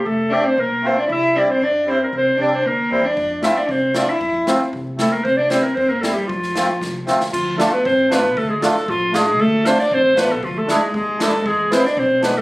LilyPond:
<<
  \new Staff \with { instrumentName = "Clarinet" } { \time 2/4 \tempo 4 = 116 a'8 d''16 c''16 bes'8 c''16 d''16 | e''8 d''16 c''16 d''8 c''16 bes'16 | c''8 d''16 c''16 bes'8 c''16 d''16~ | d''16 r16 e''16 d''16 c''8 d''16 e''16~ |
e''16 r16 c''16 r8. a'16 bes'16 | c''16 d''16 c''16 bes'16 c''16 bes'16 a'16 g'16 | f'4. r8 | f'8 a'16 b'16 c''8 b'8 |
a'16 gis'16 a'8 f'8 gis'8 | a'8 c''16 d''16 c''8 b'16 a'16 | f'16 a'16 gis'8 gis'8 a'8 | gis'8 c''16 d''16 c''8 b'16 a'16 | }
  \new Staff \with { instrumentName = "Accordion" } { \time 2/4 r8 <a c' g'>16 r8. <a c' f'>16 r16 | r8 <g c' e'>16 r8. <g c' e'>16 r16 | r8 <g c' d'>16 r8. <g c' e'>16 r16 | r8 <a c' f'>16 r8. <a c' f'>16 r16 |
r8 <a c' f'>16 r8. <a c' e'>16 r16 | r8 <g c' e'>16 r8. <g c' e'>16 r16 | r8 <a c' f'>16 r8. <a c' f'>16 r16 | r8 <a d' f'>16 r8. <a d' f'>16 r16 |
r8 <a d' f'>16 r8. <a d' f'>16 r16 | r8 <a d' f'>16 r8. <a d' f'>16 r16 | r8 <a d' e'>16 r8. <a d' e'>16 r16 | r8 <gis b e'>16 r8. <gis b d'>16 r16 | }
  \new Staff \with { instrumentName = "Cello" } { \time 2/4 a8 d'16 c'16 bes8. d'16 | e'8 d'16 c'16 d'8 c'8 | c'8 d'8 bes8. d'16~ | d'16 r16 e'16 d'16 c'8 d'16 e'16~ |
e'16 r16 c'16 r8. a16 bes16 | c'16 d'16 c'8 c'16 bes8 g16 | f4. r8 | f8 a16 b16 c'8 b8 |
a16 gis8. f8 gis8 | a8 c'16 d'16 c'8 b8 | f16 a16 gis8 gis4 | gis8 c'16 d'16 c'8 b16 a16 | }
  \new Staff \with { instrumentName = "Upright bass" } { \clef bass \time 2/4 f,,4 b,,4 | c,4 g,4 | c,8 c,8 d,8 e,8 | f,4 c,4 |
f,4 c,4 | c,4 g,4 | f,4 c,8 d,8 | d,4 a,,4 |
d,4 a,,4 | d,4 a,,4 | d,4 ees,4 | e,4 b,,4 | }
  \new DrumStaff \with { instrumentName = "Drums" } \drummode { \time 2/4 r4 r4 | r4 r4 | r4 r4 | bd8 sn8 bd8 sn8 |
bd8 sn8 bd8 sn8 | bd8 sn8 bd8 sn8 | bd16 sn16 sn8 <bd sn>8 sn16 sn16 | <cymc bd>8 sn8 bd8 sn8 |
bd8 sn16 sn16 bd8 sn8 | bd8 sn16 sn16 bd8 sn8 | bd8 sn8 bd8 sn8 | bd8 sn16 sn16 bd8 sn8 | }
>>